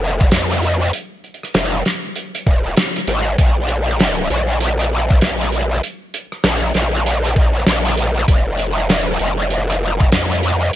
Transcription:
Already playing: F1
0.21 kick
0.31 F2, snare, closed hi-hat
0.51 closed hi-hat
0.62 closed hi-hat
0.72 closed hi-hat
0.81 closed hi-hat
0.87 closed hi-hat
0.93 closed hi-hat
1.24 closed hi-hat
1.34 closed hi-hat
1.43 cross-stick, closed hi-hat
1.54 F1, snare, closed hi-hat
1.85 snare, closed hi-hat
2.16 closed hi-hat
2.35 closed hi-hat
2.46 D#1, kick
2.77 snare, closed hi-hat
2.96 closed hi-hat
3.07 G#1, closed hi-hat
3.38 A#1, kick, closed hi-hat
3.69 closed hi-hat
3.99 snare, closed hi-hat
4.30 A#1, closed hi-hat
4.61 closed hi-hat
4.79 cross-stick, closed hi-hat
5.11 kick
5.21 A#1, snare, closed hi-hat
5.41 closed hi-hat
5.52 closed hi-hat
5.83 closed hi-hat
6.14 closed hi-hat
6.32 cross-stick
6.44 A#1, snare, closed hi-hat
6.74 A#1, snare, closed hi-hat
7.06 closed hi-hat
7.25 closed hi-hat
7.36 kick
7.67 A#1, snare, closed hi-hat
7.85 closed hi-hat
7.88 closed hi-hat
7.91 closed hi-hat
7.94 closed hi-hat
7.97 closed hi-hat
8.12 closed hi-hat
8.28 F1, kick, closed hi-hat
8.59 closed hi-hat
8.89 E1, snare, closed hi-hat
9.19 F1, closed hi-hat
9.50 closed hi-hat
9.70 cross-stick, closed hi-hat
10.00 kick
10.12 F2, snare, closed hi-hat
10.32 closed hi-hat
10.43 closed hi-hat

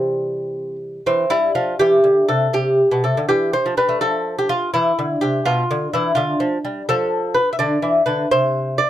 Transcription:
Already playing: C3 E3 G3 C4
1.06 E3 C4
1.30 G3 E4
1.55 F3 F4
1.79 E3 G4
2.04 D3
2.29 C3 A4
2.53 C3 G4
2.91 B2
3.04 C3 A4
3.17 D3
3.29 E3 G4
3.53 C5
3.66 F3
3.77 G3 B4
3.89 A3
4.01 F3 A4
4.38 G4
4.49 F4
4.74 E3 E4
4.99 D3
5.21 C3 G4
5.46 B2 F4
5.71 D3
5.94 E3 E4
6.15 D3 F4
6.40 F3
6.65 G3
6.89 F3 A4
7.34 B4
7.53 E5
7.59 D3 D5
7.82 E3
8.06 D3 B4
8.31 C3 C5
8.78 D5

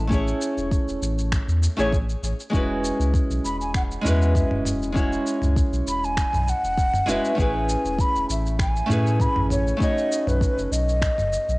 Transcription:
Already playing: A1
0.07 A3 C#4 E4, kick
0.11 G#4 C#5, shaker
0.27 shaker
0.41 shaker
0.57 E1, shaker
0.71 kick, shaker
0.87 E1, shaker
1.02 A1, shaker
1.18 shaker
1.32 finger snap, kick, shaker
1.48 E2, shaker
1.63 shaker
1.77 A1 A3 C#4 E4 G#4 C#5, shaker
1.93 kick, shaker
2.09 shaker
2.23 A1, shaker
2.40 shaker
2.50 E1 G#3 C#4 E4, kick
2.54 F#4 B4, shaker
2.84 shaker
2.99 C#2, shaker
3.14 kick, shaker
3.30 B1, shaker
3.44 E1 B5, shaker
3.61 G#5, shaker
3.74 F#5, finger snap, kick, shaker
3.92 shaker
4.01 E2 G#3 C#4 E4, mid tom
4.06 F#4 B4 E5, shaker
4.22 shaker
4.35 kick, shaker
4.51 E1, mid tom
4.65 mid tom, shaker
4.82 shaker
4.92 G#3 C#4 E4, kick, shaker
4.97 F#4 C#5
5.12 shaker
5.27 shaker
5.42 C#2, mid tom, shaker
5.56 kick, shaker
5.72 B1, shaker
5.87 E1 B5, shaker
6.04 G#5, shaker
6.17 finger snap, kick, shaker
6.33 B1, mid tom, shaker
6.48 F#5, shaker
6.63 E1, shaker
6.77 kick, shaker
6.94 mid tom, shaker
7.06 E1 G#3 C#4 E4 F#4 B4, shaker
7.10 E5
7.25 shaker
7.35 A1 A3 C#4 E4, kick
7.39 G#4 B4 G#5, shaker
7.69 shaker
7.85 E1, shaker
7.99 B5, kick, shaker
8.15 E1, shaker
8.29 A1 E5, shaker
8.46 shaker
8.59 G#5, finger snap, kick, shaker
8.76 shaker
8.86 A2 A3 C#4 E4, mid tom
8.91 G#4 B4, shaker
9.07 shaker
9.20 B5, kick, shaker
9.36 A1, mid tom
9.50 C#5, mid tom, shaker
9.67 shaker
9.77 A3 C#4 D#4, kick
9.82 F#4 C#5 D#5, shaker
9.98 shaker
10.12 shaker
10.27 B1 B4, mid tom, shaker
10.41 kick, shaker
10.57 F#1, shaker
10.71 B1 D#5, shaker
10.89 shaker
11.02 finger snap, kick, shaker
11.18 F#1, mid tom, shaker
11.33 shaker
11.48 B1, shaker

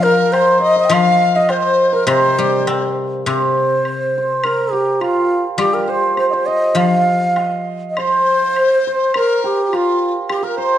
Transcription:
Already playing: F3 G4 C5 D#5 F5
0.03 A#4
0.32 C5, high woodblock, low woodblock
0.60 D#5
0.76 D#5
0.85 G5
0.89 F3 F5, high woodblock
1.36 D#5
1.49 C5, high woodblock, low woodblock
1.93 A#4
2.07 C3 C5, high woodblock
2.39 G3
2.67 C4, high woodblock, low woodblock
3.25 C3 C5, high woodblock
3.85 high woodblock
4.18 C5
4.44 A#4, high woodblock
4.72 G4
5.01 F4, high woodblock
5.58 G3 G4, high woodblock
5.74 A#4
5.88 C5
6.17 C5, high woodblock
6.30 C5 D#5
6.47 D#5
6.75 F3 F5, high woodblock
7.36 D#5, high woodblock, low woodblock
7.90 D#5
7.97 C5, high woodblock
8.56 high woodblock
8.87 C5
9.14 A#4, high woodblock
9.44 G4
9.65 G4
9.70 F4, high woodblock
9.75 F4
10.30 G4, high woodblock
10.42 A#4
10.57 C5

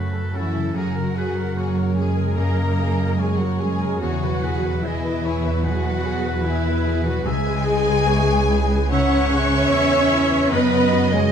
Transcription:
Already playing: F#2 C#3 A3 C#4 F#4 A4 B4 C#5
0.13 A4
0.33 E3 C#4 E4 F#4 A4 E5
0.54 C#3 A4
0.74 F#2 F#3 F#4 G#4 A#4 F#5
0.95 C#3 A#4
1.16 C#4 G#4 B4
1.36 A#4
1.56 A#3 G#4 C#5
1.76 A#4
1.96 G#3 C#4 G#4 G#5
2.17 C#3 A#4
2.36 F#2 C#3 A#3 G#4 A#4 D#5 A#5
2.58 A#3 A#4
2.79 C#4 G#4
2.99 A#4
3.18 G#3 A#3 G#4 C#5 G#5
3.38 F#3 F#4 A#4 F#5
3.59 G#3 C#4 G#4 G#5
3.81 C#3 A#4
4.00 E2 F#3 F#4 G#4 C#5 F#5
4.22 B2 B4
4.43 E4 G#4 B4
4.65 B4
4.83 E3 B3 E4 G#4 D#5 E5 G#5
5.04 B4
5.24 E4 G#4 C#5
5.45 B2 B4
5.64 E2 B2 F#3 F#4 G#4 B4 F#5
5.85 B3 B4
6.05 G#4
6.25 B4
6.45 E3 B3 E4 G#4 E5
6.65 B4
6.85 E4 G#4
7.05 B2 F#3 F#4 B4 F#5
7.25 C#2 C#3 G#3 G#4 E5 G#5
7.46 B4
7.66 E4 G#4 D#5
7.86 B4
8.06 B3 C#5 E5
8.26 B4
8.48 E4
8.70 G#3 B4
8.91 G#2 C#3 C#4 C#5 E5 F#5 C#6
9.12 B3 B4
9.32 E4 G#4 E5 F#5
9.53 B4
9.72 E2 B3 E5
9.92 B4
10.12 E4
10.31 G#3 B4
10.51 F#2 B3 B4 D#5 B5
10.71 C#3 C#5
10.92 F#4
11.12 G#3 G#4 C#5 G#5

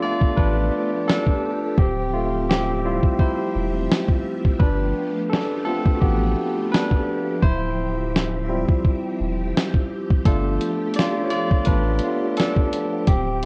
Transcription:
Already playing: F3 A3 B3 D4 F4 G4 A4 D5
0.02 A3 B3 F4 D5
0.21 kick
0.36 A1 D4 B4, kick
1.08 D4 A4, snare
1.27 kick
1.78 D1 F3 C4 G4 E5, kick
2.14 A3 F4
2.50 C4 G4, snare
2.84 G3 C4 E4 F4
3.03 kick
3.19 E4 C5, kick
3.55 E1
3.92 snare
4.09 kick
4.45 kick
4.59 G1 A3 B3 D4 G4 B4, kick
5.30 D4 A4, snare
5.65 A3 B3 C4 F4 A4
5.86 kick
5.95 F#4
6.01 A1 B3 G4, kick
6.72 D4 B4, snare
6.91 kick
7.42 D1 C4 E4 C5 E5, kick
8.16 snare
8.49 G3 C4 E4 F4
8.69 kick
8.85 kick
9.20 E1
9.57 snare
9.74 kick
10.11 kick
10.25 G1 A3 B3 D4 F4 A4, kick, closed hi-hat
10.61 closed hi-hat
10.94 D5, closed hi-hat
10.99 F4, snare
11.24 C#5
11.30 F4 D5, closed hi-hat
11.51 kick
11.65 A1 D4 B4, kick, closed hi-hat
11.99 closed hi-hat
12.03 A3 B3 F4
12.37 D4 A4, snare, closed hi-hat
12.56 kick
12.73 closed hi-hat
13.06 D1 C4 G4 E5, kick, closed hi-hat

